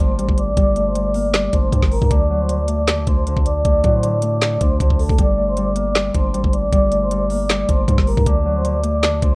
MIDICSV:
0, 0, Header, 1, 5, 480
1, 0, Start_track
1, 0, Key_signature, -2, "minor"
1, 0, Tempo, 384615
1, 713, Time_signature, 4, 2, 24, 8
1, 11669, End_track
2, 0, Start_track
2, 0, Title_t, "Vibraphone"
2, 0, Program_c, 0, 11
2, 0, Note_on_c, 0, 72, 75
2, 3, Note_on_c, 0, 84, 63
2, 444, Note_off_c, 0, 72, 0
2, 449, Note_off_c, 0, 84, 0
2, 474, Note_on_c, 0, 74, 84
2, 484, Note_on_c, 0, 86, 59
2, 693, Note_off_c, 0, 74, 0
2, 699, Note_off_c, 0, 86, 0
2, 715, Note_on_c, 0, 74, 105
2, 726, Note_on_c, 0, 86, 80
2, 1059, Note_off_c, 0, 74, 0
2, 1065, Note_off_c, 0, 86, 0
2, 1079, Note_on_c, 0, 72, 76
2, 1089, Note_on_c, 0, 84, 57
2, 1183, Note_off_c, 0, 72, 0
2, 1188, Note_off_c, 0, 84, 0
2, 1191, Note_on_c, 0, 74, 79
2, 1201, Note_on_c, 0, 86, 68
2, 1537, Note_off_c, 0, 74, 0
2, 1542, Note_off_c, 0, 86, 0
2, 1558, Note_on_c, 0, 74, 77
2, 1568, Note_on_c, 0, 86, 58
2, 1890, Note_off_c, 0, 74, 0
2, 1896, Note_off_c, 0, 86, 0
2, 1913, Note_on_c, 0, 72, 82
2, 1922, Note_on_c, 0, 84, 64
2, 2364, Note_off_c, 0, 72, 0
2, 2369, Note_off_c, 0, 84, 0
2, 2390, Note_on_c, 0, 70, 76
2, 2400, Note_on_c, 0, 82, 58
2, 2611, Note_off_c, 0, 70, 0
2, 2617, Note_off_c, 0, 82, 0
2, 2631, Note_on_c, 0, 74, 91
2, 2641, Note_on_c, 0, 86, 72
2, 2977, Note_off_c, 0, 74, 0
2, 2982, Note_off_c, 0, 86, 0
2, 2998, Note_on_c, 0, 72, 76
2, 3008, Note_on_c, 0, 84, 61
2, 3102, Note_off_c, 0, 72, 0
2, 3108, Note_off_c, 0, 84, 0
2, 3110, Note_on_c, 0, 74, 79
2, 3120, Note_on_c, 0, 86, 62
2, 3456, Note_off_c, 0, 74, 0
2, 3462, Note_off_c, 0, 86, 0
2, 3479, Note_on_c, 0, 74, 85
2, 3489, Note_on_c, 0, 86, 64
2, 3583, Note_off_c, 0, 74, 0
2, 3588, Note_off_c, 0, 86, 0
2, 3832, Note_on_c, 0, 72, 76
2, 3842, Note_on_c, 0, 84, 61
2, 4284, Note_off_c, 0, 72, 0
2, 4289, Note_off_c, 0, 84, 0
2, 4313, Note_on_c, 0, 74, 88
2, 4323, Note_on_c, 0, 86, 66
2, 4533, Note_off_c, 0, 74, 0
2, 4538, Note_off_c, 0, 86, 0
2, 4549, Note_on_c, 0, 74, 110
2, 4560, Note_on_c, 0, 86, 77
2, 4896, Note_off_c, 0, 74, 0
2, 4902, Note_off_c, 0, 86, 0
2, 4920, Note_on_c, 0, 72, 78
2, 4930, Note_on_c, 0, 84, 65
2, 5023, Note_off_c, 0, 72, 0
2, 5028, Note_off_c, 0, 84, 0
2, 5029, Note_on_c, 0, 74, 82
2, 5039, Note_on_c, 0, 86, 68
2, 5376, Note_off_c, 0, 74, 0
2, 5381, Note_off_c, 0, 86, 0
2, 5398, Note_on_c, 0, 74, 71
2, 5408, Note_on_c, 0, 86, 58
2, 5730, Note_off_c, 0, 74, 0
2, 5736, Note_off_c, 0, 86, 0
2, 5752, Note_on_c, 0, 72, 88
2, 5761, Note_on_c, 0, 84, 65
2, 6203, Note_off_c, 0, 72, 0
2, 6208, Note_off_c, 0, 84, 0
2, 6233, Note_on_c, 0, 69, 75
2, 6243, Note_on_c, 0, 81, 63
2, 6453, Note_off_c, 0, 69, 0
2, 6458, Note_off_c, 0, 81, 0
2, 6473, Note_on_c, 0, 74, 94
2, 6482, Note_on_c, 0, 86, 66
2, 6818, Note_off_c, 0, 74, 0
2, 6823, Note_off_c, 0, 86, 0
2, 6839, Note_on_c, 0, 72, 75
2, 6849, Note_on_c, 0, 84, 62
2, 6942, Note_off_c, 0, 72, 0
2, 6948, Note_off_c, 0, 84, 0
2, 6953, Note_on_c, 0, 74, 80
2, 6963, Note_on_c, 0, 86, 64
2, 7298, Note_off_c, 0, 74, 0
2, 7303, Note_off_c, 0, 86, 0
2, 7322, Note_on_c, 0, 74, 85
2, 7331, Note_on_c, 0, 86, 68
2, 7424, Note_off_c, 0, 74, 0
2, 7429, Note_off_c, 0, 86, 0
2, 7672, Note_on_c, 0, 72, 73
2, 7682, Note_on_c, 0, 84, 62
2, 8123, Note_off_c, 0, 72, 0
2, 8129, Note_off_c, 0, 84, 0
2, 8152, Note_on_c, 0, 74, 83
2, 8163, Note_on_c, 0, 86, 59
2, 8372, Note_off_c, 0, 74, 0
2, 8378, Note_off_c, 0, 86, 0
2, 8394, Note_on_c, 0, 74, 110
2, 8404, Note_on_c, 0, 86, 77
2, 8739, Note_off_c, 0, 74, 0
2, 8744, Note_off_c, 0, 86, 0
2, 8760, Note_on_c, 0, 72, 78
2, 8770, Note_on_c, 0, 84, 58
2, 8863, Note_off_c, 0, 72, 0
2, 8869, Note_off_c, 0, 84, 0
2, 8871, Note_on_c, 0, 74, 83
2, 8881, Note_on_c, 0, 86, 67
2, 9217, Note_off_c, 0, 74, 0
2, 9222, Note_off_c, 0, 86, 0
2, 9238, Note_on_c, 0, 74, 75
2, 9249, Note_on_c, 0, 86, 60
2, 9571, Note_off_c, 0, 74, 0
2, 9576, Note_off_c, 0, 86, 0
2, 9593, Note_on_c, 0, 72, 82
2, 9603, Note_on_c, 0, 84, 62
2, 10044, Note_off_c, 0, 72, 0
2, 10050, Note_off_c, 0, 84, 0
2, 10070, Note_on_c, 0, 70, 79
2, 10080, Note_on_c, 0, 82, 57
2, 10291, Note_off_c, 0, 70, 0
2, 10297, Note_off_c, 0, 82, 0
2, 10311, Note_on_c, 0, 74, 90
2, 10321, Note_on_c, 0, 86, 74
2, 10657, Note_off_c, 0, 74, 0
2, 10662, Note_off_c, 0, 86, 0
2, 10678, Note_on_c, 0, 72, 83
2, 10688, Note_on_c, 0, 84, 62
2, 10782, Note_off_c, 0, 72, 0
2, 10787, Note_off_c, 0, 84, 0
2, 10791, Note_on_c, 0, 74, 79
2, 10801, Note_on_c, 0, 86, 62
2, 11137, Note_off_c, 0, 74, 0
2, 11142, Note_off_c, 0, 86, 0
2, 11159, Note_on_c, 0, 74, 84
2, 11169, Note_on_c, 0, 86, 63
2, 11263, Note_off_c, 0, 74, 0
2, 11268, Note_off_c, 0, 86, 0
2, 11513, Note_on_c, 0, 72, 73
2, 11523, Note_on_c, 0, 84, 61
2, 11669, Note_off_c, 0, 72, 0
2, 11669, Note_off_c, 0, 84, 0
2, 11669, End_track
3, 0, Start_track
3, 0, Title_t, "Harp"
3, 0, Program_c, 1, 46
3, 0, Note_on_c, 1, 55, 89
3, 0, Note_on_c, 1, 57, 78
3, 0, Note_on_c, 1, 58, 82
3, 0, Note_on_c, 1, 62, 89
3, 213, Note_off_c, 1, 55, 0
3, 228, Note_on_c, 1, 55, 86
3, 696, Note_off_c, 1, 55, 0
3, 711, Note_on_c, 1, 55, 102
3, 946, Note_off_c, 1, 57, 0
3, 951, Note_on_c, 1, 57, 79
3, 1026, Note_off_c, 1, 58, 0
3, 1171, Note_off_c, 1, 55, 0
3, 1186, Note_on_c, 1, 55, 79
3, 1434, Note_on_c, 1, 58, 82
3, 1659, Note_off_c, 1, 55, 0
3, 1674, Note_on_c, 1, 55, 87
3, 1912, Note_off_c, 1, 62, 0
3, 1917, Note_on_c, 1, 62, 86
3, 2136, Note_off_c, 1, 55, 0
3, 2151, Note_on_c, 1, 55, 86
3, 2634, Note_on_c, 1, 50, 103
3, 2695, Note_off_c, 1, 55, 0
3, 2871, Note_on_c, 1, 54, 78
3, 3096, Note_off_c, 1, 50, 0
3, 3111, Note_on_c, 1, 50, 81
3, 3175, Note_off_c, 1, 54, 0
3, 3342, Note_off_c, 1, 57, 0
3, 3347, Note_on_c, 1, 57, 78
3, 3422, Note_off_c, 1, 58, 0
3, 3578, Note_off_c, 1, 50, 0
3, 3593, Note_on_c, 1, 50, 94
3, 3827, Note_off_c, 1, 62, 0
3, 3832, Note_on_c, 1, 62, 94
3, 4067, Note_off_c, 1, 50, 0
3, 4082, Note_on_c, 1, 50, 85
3, 4533, Note_off_c, 1, 50, 0
3, 4548, Note_on_c, 1, 50, 103
3, 4790, Note_on_c, 1, 54, 83
3, 5012, Note_off_c, 1, 50, 0
3, 5027, Note_on_c, 1, 50, 84
3, 5095, Note_off_c, 1, 54, 0
3, 5267, Note_off_c, 1, 57, 0
3, 5272, Note_on_c, 1, 57, 78
3, 5496, Note_off_c, 1, 50, 0
3, 5511, Note_on_c, 1, 50, 77
3, 5747, Note_off_c, 1, 62, 0
3, 5752, Note_on_c, 1, 62, 86
3, 5980, Note_off_c, 1, 50, 0
3, 5995, Note_on_c, 1, 50, 82
3, 6475, Note_on_c, 1, 55, 92
3, 6535, Note_off_c, 1, 50, 0
3, 6704, Note_off_c, 1, 57, 0
3, 6709, Note_on_c, 1, 57, 76
3, 6940, Note_off_c, 1, 55, 0
3, 6955, Note_on_c, 1, 55, 87
3, 7190, Note_on_c, 1, 58, 83
3, 7413, Note_off_c, 1, 55, 0
3, 7428, Note_on_c, 1, 55, 88
3, 7672, Note_off_c, 1, 62, 0
3, 7677, Note_on_c, 1, 62, 88
3, 7893, Note_off_c, 1, 55, 0
3, 7908, Note_on_c, 1, 55, 84
3, 8378, Note_off_c, 1, 55, 0
3, 8393, Note_on_c, 1, 55, 103
3, 8627, Note_off_c, 1, 57, 0
3, 8632, Note_on_c, 1, 57, 80
3, 8707, Note_off_c, 1, 58, 0
3, 8855, Note_off_c, 1, 55, 0
3, 8870, Note_on_c, 1, 55, 78
3, 9116, Note_on_c, 1, 58, 84
3, 9341, Note_off_c, 1, 55, 0
3, 9356, Note_on_c, 1, 55, 85
3, 9593, Note_off_c, 1, 62, 0
3, 9598, Note_on_c, 1, 62, 88
3, 9816, Note_off_c, 1, 55, 0
3, 9831, Note_on_c, 1, 55, 86
3, 10314, Note_on_c, 1, 50, 102
3, 10375, Note_off_c, 1, 55, 0
3, 10551, Note_on_c, 1, 54, 80
3, 10776, Note_off_c, 1, 50, 0
3, 10791, Note_on_c, 1, 50, 82
3, 10855, Note_off_c, 1, 54, 0
3, 11023, Note_off_c, 1, 57, 0
3, 11028, Note_on_c, 1, 57, 83
3, 11103, Note_off_c, 1, 58, 0
3, 11259, Note_off_c, 1, 50, 0
3, 11274, Note_on_c, 1, 50, 93
3, 11508, Note_off_c, 1, 62, 0
3, 11513, Note_on_c, 1, 62, 94
3, 11669, Note_off_c, 1, 50, 0
3, 11669, Note_off_c, 1, 57, 0
3, 11669, Note_off_c, 1, 62, 0
3, 11669, End_track
4, 0, Start_track
4, 0, Title_t, "808-style bass"
4, 0, Program_c, 2, 38
4, 0, Note_on_c, 2, 31, 106
4, 233, Note_on_c, 2, 33, 97
4, 251, Note_off_c, 2, 31, 0
4, 353, Note_off_c, 2, 33, 0
4, 359, Note_on_c, 2, 31, 106
4, 599, Note_on_c, 2, 33, 101
4, 618, Note_off_c, 2, 31, 0
4, 707, Note_off_c, 2, 33, 0
4, 712, Note_on_c, 2, 31, 106
4, 1864, Note_off_c, 2, 31, 0
4, 1913, Note_on_c, 2, 31, 106
4, 2143, Note_off_c, 2, 31, 0
4, 2153, Note_on_c, 2, 43, 102
4, 2271, Note_off_c, 2, 43, 0
4, 2279, Note_on_c, 2, 31, 100
4, 2510, Note_off_c, 2, 31, 0
4, 2518, Note_on_c, 2, 43, 105
4, 2625, Note_off_c, 2, 43, 0
4, 2632, Note_on_c, 2, 38, 104
4, 3592, Note_on_c, 2, 39, 101
4, 3611, Note_off_c, 2, 38, 0
4, 3719, Note_on_c, 2, 38, 102
4, 3738, Note_off_c, 2, 39, 0
4, 3827, Note_off_c, 2, 38, 0
4, 3833, Note_on_c, 2, 38, 107
4, 4186, Note_off_c, 2, 38, 0
4, 4200, Note_on_c, 2, 38, 100
4, 4538, Note_off_c, 2, 38, 0
4, 4553, Note_on_c, 2, 38, 108
4, 4783, Note_off_c, 2, 38, 0
4, 4792, Note_on_c, 2, 45, 106
4, 5714, Note_off_c, 2, 45, 0
4, 5754, Note_on_c, 2, 38, 108
4, 5984, Note_off_c, 2, 38, 0
4, 5993, Note_on_c, 2, 38, 101
4, 6345, Note_off_c, 2, 38, 0
4, 6359, Note_on_c, 2, 38, 101
4, 6468, Note_off_c, 2, 38, 0
4, 6473, Note_on_c, 2, 31, 107
4, 7625, Note_off_c, 2, 31, 0
4, 7673, Note_on_c, 2, 31, 105
4, 7912, Note_on_c, 2, 33, 97
4, 7931, Note_off_c, 2, 31, 0
4, 8033, Note_off_c, 2, 33, 0
4, 8040, Note_on_c, 2, 31, 108
4, 8279, Note_on_c, 2, 33, 101
4, 8298, Note_off_c, 2, 31, 0
4, 8387, Note_off_c, 2, 33, 0
4, 8392, Note_on_c, 2, 31, 104
4, 9544, Note_off_c, 2, 31, 0
4, 9593, Note_on_c, 2, 31, 107
4, 9823, Note_off_c, 2, 31, 0
4, 9833, Note_on_c, 2, 43, 105
4, 9952, Note_off_c, 2, 43, 0
4, 9959, Note_on_c, 2, 31, 101
4, 10190, Note_off_c, 2, 31, 0
4, 10199, Note_on_c, 2, 43, 103
4, 10308, Note_off_c, 2, 43, 0
4, 10313, Note_on_c, 2, 38, 103
4, 11273, Note_on_c, 2, 39, 102
4, 11292, Note_off_c, 2, 38, 0
4, 11400, Note_on_c, 2, 38, 101
4, 11419, Note_off_c, 2, 39, 0
4, 11507, Note_off_c, 2, 38, 0
4, 11514, Note_on_c, 2, 38, 103
4, 11669, Note_off_c, 2, 38, 0
4, 11669, End_track
5, 0, Start_track
5, 0, Title_t, "Drums"
5, 237, Note_on_c, 9, 42, 70
5, 359, Note_on_c, 9, 36, 89
5, 362, Note_off_c, 9, 42, 0
5, 473, Note_on_c, 9, 42, 76
5, 484, Note_off_c, 9, 36, 0
5, 597, Note_off_c, 9, 42, 0
5, 711, Note_on_c, 9, 42, 91
5, 712, Note_on_c, 9, 36, 112
5, 836, Note_off_c, 9, 42, 0
5, 837, Note_off_c, 9, 36, 0
5, 949, Note_on_c, 9, 42, 63
5, 1074, Note_off_c, 9, 42, 0
5, 1191, Note_on_c, 9, 42, 83
5, 1316, Note_off_c, 9, 42, 0
5, 1427, Note_on_c, 9, 46, 64
5, 1552, Note_off_c, 9, 46, 0
5, 1671, Note_on_c, 9, 38, 119
5, 1676, Note_on_c, 9, 42, 96
5, 1677, Note_on_c, 9, 39, 95
5, 1796, Note_off_c, 9, 38, 0
5, 1801, Note_off_c, 9, 42, 0
5, 1802, Note_off_c, 9, 39, 0
5, 1911, Note_on_c, 9, 42, 84
5, 1913, Note_on_c, 9, 36, 97
5, 2035, Note_off_c, 9, 42, 0
5, 2038, Note_off_c, 9, 36, 0
5, 2153, Note_on_c, 9, 36, 90
5, 2157, Note_on_c, 9, 42, 69
5, 2277, Note_off_c, 9, 36, 0
5, 2278, Note_on_c, 9, 38, 62
5, 2279, Note_on_c, 9, 36, 89
5, 2281, Note_off_c, 9, 42, 0
5, 2393, Note_on_c, 9, 46, 55
5, 2403, Note_off_c, 9, 38, 0
5, 2404, Note_off_c, 9, 36, 0
5, 2517, Note_off_c, 9, 46, 0
5, 2518, Note_on_c, 9, 36, 97
5, 2631, Note_on_c, 9, 42, 87
5, 2632, Note_off_c, 9, 36, 0
5, 2632, Note_on_c, 9, 36, 112
5, 2756, Note_off_c, 9, 42, 0
5, 2757, Note_off_c, 9, 36, 0
5, 3111, Note_on_c, 9, 42, 83
5, 3236, Note_off_c, 9, 42, 0
5, 3347, Note_on_c, 9, 42, 81
5, 3472, Note_off_c, 9, 42, 0
5, 3592, Note_on_c, 9, 38, 118
5, 3596, Note_on_c, 9, 42, 99
5, 3598, Note_on_c, 9, 39, 92
5, 3717, Note_off_c, 9, 38, 0
5, 3721, Note_off_c, 9, 42, 0
5, 3723, Note_off_c, 9, 39, 0
5, 3831, Note_on_c, 9, 42, 85
5, 3833, Note_on_c, 9, 36, 103
5, 3956, Note_off_c, 9, 42, 0
5, 3958, Note_off_c, 9, 36, 0
5, 4077, Note_on_c, 9, 42, 69
5, 4200, Note_on_c, 9, 36, 88
5, 4202, Note_off_c, 9, 42, 0
5, 4313, Note_on_c, 9, 42, 75
5, 4324, Note_off_c, 9, 36, 0
5, 4438, Note_off_c, 9, 42, 0
5, 4552, Note_on_c, 9, 42, 91
5, 4553, Note_on_c, 9, 36, 109
5, 4677, Note_off_c, 9, 36, 0
5, 4677, Note_off_c, 9, 42, 0
5, 4789, Note_on_c, 9, 42, 64
5, 4792, Note_on_c, 9, 36, 96
5, 4914, Note_off_c, 9, 42, 0
5, 4917, Note_off_c, 9, 36, 0
5, 5032, Note_on_c, 9, 42, 84
5, 5157, Note_off_c, 9, 42, 0
5, 5268, Note_on_c, 9, 42, 90
5, 5392, Note_off_c, 9, 42, 0
5, 5512, Note_on_c, 9, 38, 114
5, 5517, Note_on_c, 9, 42, 97
5, 5518, Note_on_c, 9, 39, 93
5, 5637, Note_off_c, 9, 38, 0
5, 5641, Note_off_c, 9, 42, 0
5, 5643, Note_off_c, 9, 39, 0
5, 5751, Note_on_c, 9, 42, 87
5, 5753, Note_on_c, 9, 36, 97
5, 5876, Note_off_c, 9, 42, 0
5, 5878, Note_off_c, 9, 36, 0
5, 5993, Note_on_c, 9, 36, 96
5, 5998, Note_on_c, 9, 42, 69
5, 6118, Note_off_c, 9, 36, 0
5, 6119, Note_on_c, 9, 36, 87
5, 6122, Note_off_c, 9, 42, 0
5, 6233, Note_on_c, 9, 46, 54
5, 6244, Note_off_c, 9, 36, 0
5, 6358, Note_off_c, 9, 46, 0
5, 6359, Note_on_c, 9, 36, 96
5, 6472, Note_on_c, 9, 42, 89
5, 6473, Note_off_c, 9, 36, 0
5, 6473, Note_on_c, 9, 36, 112
5, 6597, Note_off_c, 9, 36, 0
5, 6597, Note_off_c, 9, 42, 0
5, 6951, Note_on_c, 9, 42, 86
5, 7076, Note_off_c, 9, 42, 0
5, 7188, Note_on_c, 9, 42, 81
5, 7312, Note_off_c, 9, 42, 0
5, 7432, Note_on_c, 9, 38, 121
5, 7437, Note_on_c, 9, 42, 92
5, 7438, Note_on_c, 9, 39, 92
5, 7557, Note_off_c, 9, 38, 0
5, 7562, Note_off_c, 9, 42, 0
5, 7563, Note_off_c, 9, 39, 0
5, 7671, Note_on_c, 9, 42, 85
5, 7673, Note_on_c, 9, 36, 98
5, 7796, Note_off_c, 9, 42, 0
5, 7798, Note_off_c, 9, 36, 0
5, 7918, Note_on_c, 9, 42, 74
5, 8039, Note_on_c, 9, 36, 90
5, 8043, Note_off_c, 9, 42, 0
5, 8154, Note_on_c, 9, 42, 75
5, 8164, Note_off_c, 9, 36, 0
5, 8278, Note_off_c, 9, 42, 0
5, 8392, Note_on_c, 9, 36, 108
5, 8392, Note_on_c, 9, 42, 88
5, 8517, Note_off_c, 9, 36, 0
5, 8517, Note_off_c, 9, 42, 0
5, 8630, Note_on_c, 9, 42, 65
5, 8755, Note_off_c, 9, 42, 0
5, 8872, Note_on_c, 9, 42, 87
5, 8997, Note_off_c, 9, 42, 0
5, 9108, Note_on_c, 9, 46, 65
5, 9232, Note_off_c, 9, 46, 0
5, 9352, Note_on_c, 9, 38, 120
5, 9357, Note_on_c, 9, 42, 94
5, 9358, Note_on_c, 9, 39, 93
5, 9477, Note_off_c, 9, 38, 0
5, 9481, Note_off_c, 9, 42, 0
5, 9483, Note_off_c, 9, 39, 0
5, 9591, Note_on_c, 9, 42, 88
5, 9593, Note_on_c, 9, 36, 101
5, 9716, Note_off_c, 9, 42, 0
5, 9718, Note_off_c, 9, 36, 0
5, 9833, Note_on_c, 9, 36, 97
5, 9837, Note_on_c, 9, 42, 73
5, 9958, Note_off_c, 9, 36, 0
5, 9959, Note_on_c, 9, 36, 90
5, 9959, Note_on_c, 9, 38, 62
5, 9962, Note_off_c, 9, 42, 0
5, 10073, Note_on_c, 9, 46, 54
5, 10084, Note_off_c, 9, 36, 0
5, 10084, Note_off_c, 9, 38, 0
5, 10198, Note_off_c, 9, 46, 0
5, 10199, Note_on_c, 9, 36, 100
5, 10312, Note_off_c, 9, 36, 0
5, 10312, Note_on_c, 9, 36, 114
5, 10312, Note_on_c, 9, 42, 90
5, 10437, Note_off_c, 9, 36, 0
5, 10437, Note_off_c, 9, 42, 0
5, 10792, Note_on_c, 9, 42, 85
5, 10917, Note_off_c, 9, 42, 0
5, 11027, Note_on_c, 9, 42, 82
5, 11152, Note_off_c, 9, 42, 0
5, 11272, Note_on_c, 9, 38, 117
5, 11277, Note_on_c, 9, 42, 99
5, 11278, Note_on_c, 9, 39, 93
5, 11397, Note_off_c, 9, 38, 0
5, 11401, Note_off_c, 9, 42, 0
5, 11403, Note_off_c, 9, 39, 0
5, 11511, Note_on_c, 9, 42, 86
5, 11513, Note_on_c, 9, 36, 101
5, 11636, Note_off_c, 9, 42, 0
5, 11638, Note_off_c, 9, 36, 0
5, 11669, End_track
0, 0, End_of_file